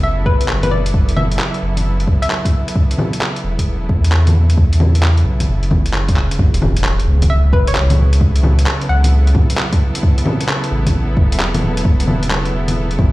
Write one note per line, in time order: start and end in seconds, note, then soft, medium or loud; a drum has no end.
0.00 0.27 F#1 loud
0.00 2.75 C#3 medium
0.00 6.39 F#3 medium
0.00 6.39 B3 medium
0.00 6.39 E4 medium
0.00 6.40 A4 medium
0.00 0.24 E5 medium
0.26 0.50 B1 medium
0.26 0.38 B4 medium
0.26 kick loud
0.41 closed hi-hat soft
0.48 1.38 F#1 medium
0.48 clap medium
0.63 0.70 B4 medium
0.63 closed hi-hat soft
0.63 low bongo medium
0.71 0.95 D5 medium
0.71 low bongo soft
0.86 closed hi-hat soft
0.94 kick loud
1.09 closed hi-hat soft
1.16 1.41 E5 medium
1.16 low bongo medium
1.32 closed hi-hat soft
1.39 clap loud
1.54 closed hi-hat soft
1.62 2.07 F#1 medium
1.77 closed hi-hat soft
1.77 low bongo soft
2.00 closed hi-hat soft
2.07 kick loud
2.22 2.68 E5 medium
2.22 closed hi-hat medium
2.30 clap medium
2.45 kick loud
2.45 closed hi-hat soft
2.68 closed hi-hat soft
2.76 13.12 C#3 medium
2.76 kick loud
2.91 closed hi-hat soft
2.98 low bongo medium
3.13 closed hi-hat medium
3.21 clap medium
3.36 closed hi-hat soft
3.44 3.65 E1 medium
3.59 kick medium
3.59 closed hi-hat medium
3.66 3.91 E1 medium
3.89 5.24 E2 medium
3.89 kick loud
4.04 closed hi-hat medium
4.12 clap medium
4.27 closed hi-hat soft
4.27 low bongo medium
4.35 low bongo soft
4.50 closed hi-hat medium
4.58 kick loud
4.73 closed hi-hat soft
4.80 low bongo medium
4.95 closed hi-hat medium
5.03 clap loud
5.17 closed hi-hat soft
5.25 5.47 B1 medium
5.40 closed hi-hat medium
5.40 low bongo soft
5.48 6.16 F#1 medium
5.63 closed hi-hat soft
5.71 kick loud
5.71 low bongo medium
5.86 closed hi-hat medium
5.94 clap medium
6.08 kick loud
6.08 closed hi-hat soft
6.16 6.38 E1 loud
6.16 clap medium
6.31 closed hi-hat medium
6.39 7.06 F#1 loud
6.39 kick loud
6.39 impact medium
6.54 13.12 F#3 medium
6.54 closed hi-hat soft
6.62 low bongo medium
6.77 closed hi-hat medium
6.84 clap loud
7.00 closed hi-hat soft
7.07 7.54 C#2 loud
7.07 13.12 B3 medium
7.22 kick medium
7.22 closed hi-hat medium
7.22 low bongo soft
7.30 7.51 E5 medium
7.53 7.77 F#1 medium
7.53 7.65 B4 medium
7.53 kick loud
7.67 7.91 C#5 medium
7.67 closed hi-hat medium
7.73 8.66 C#2 medium
7.73 13.12 E4 medium
7.73 clap loud
7.89 13.12 A4 medium
7.89 closed hi-hat soft
7.89 low bongo medium
7.98 low bongo soft
8.13 closed hi-hat medium
8.21 kick loud
8.36 closed hi-hat soft
8.43 low bongo medium
8.59 closed hi-hat medium
8.66 clap loud
8.81 closed hi-hat soft
8.89 9.34 C#2 loud
8.89 9.54 F#5 medium
9.04 closed hi-hat medium
9.04 low bongo soft
9.27 closed hi-hat soft
9.35 kick loud
9.35 low bongo medium
9.50 closed hi-hat medium
9.57 clap loud
9.73 kick loud
9.73 closed hi-hat soft
9.95 closed hi-hat medium
10.03 kick loud
10.18 closed hi-hat soft
10.26 low bongo medium
10.41 closed hi-hat medium
10.49 clap loud
10.64 closed hi-hat soft
10.71 10.93 A1 loud
10.86 kick medium
10.86 closed hi-hat medium
10.86 low bongo soft
10.94 11.18 A1 medium
11.17 12.52 E1 medium
11.17 kick loud
11.32 closed hi-hat medium
11.40 clap loud
11.54 closed hi-hat soft
11.54 low bongo medium
11.62 low bongo soft
11.77 closed hi-hat medium
11.85 kick loud
12.00 closed hi-hat soft
12.07 low bongo medium
12.23 closed hi-hat medium
12.31 clap loud
12.45 closed hi-hat soft
12.53 13.00 E1 medium
12.68 closed hi-hat medium
12.68 low bongo soft
12.91 closed hi-hat soft
12.99 13.12 A1 loud
12.99 kick loud
12.99 low bongo medium